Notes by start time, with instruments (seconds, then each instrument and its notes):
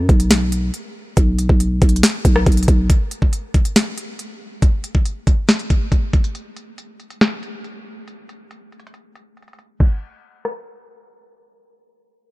0.09 808-style bass B1, kick, closed hi-hat
0.20 closed hi-hat
0.31 snare, closed hi-hat
0.52 closed hi-hat
0.74 closed hi-hat
1.17 808-style bass B1, kick, closed hi-hat
1.39 closed hi-hat
1.49 808-style bass B1, kick
1.60 closed hi-hat
1.82 808-style bass B1, kick, closed hi-hat
1.89 closed hi-hat
1.96 closed hi-hat
2.03 snare, closed hi-hat
2.25 808-style bass B1, kick, closed hi-hat
2.36 cross-stick
2.46 808-style bass B1, kick, closed hi-hat
2.52 closed hi-hat
2.57 closed hi-hat
2.63 closed hi-hat
2.68 808-style bass B1, kick, closed hi-hat
2.90 kick, closed hi-hat
3.11 closed hi-hat
3.22 kick
3.33 closed hi-hat
3.54 kick, closed hi-hat
3.65 closed hi-hat
3.76 snare, closed hi-hat
3.98 closed hi-hat
4.19 closed hi-hat
4.62 kick, closed hi-hat
4.84 closed hi-hat
4.95 kick
5.05 closed hi-hat
5.27 kick, closed hi-hat
5.49 snare, closed hi-hat
5.59 closed hi-hat
5.70 kick, closed hi-hat
5.92 kick, closed hi-hat
6.13 kick, closed hi-hat
6.24 closed hi-hat
6.35 closed hi-hat
6.56 closed hi-hat
6.78 closed hi-hat
7.00 closed hi-hat
7.10 closed hi-hat
7.21 snare, closed hi-hat
7.43 closed hi-hat
7.64 closed hi-hat
8.08 closed hi-hat
8.29 closed hi-hat
8.51 closed hi-hat
8.72 closed hi-hat
8.80 closed hi-hat
8.87 closed hi-hat
8.94 closed hi-hat
9.15 closed hi-hat
9.37 closed hi-hat
9.42 closed hi-hat
9.48 closed hi-hat
9.53 closed hi-hat
9.59 closed hi-hat
9.80 kick, crash
10.45 cross-stick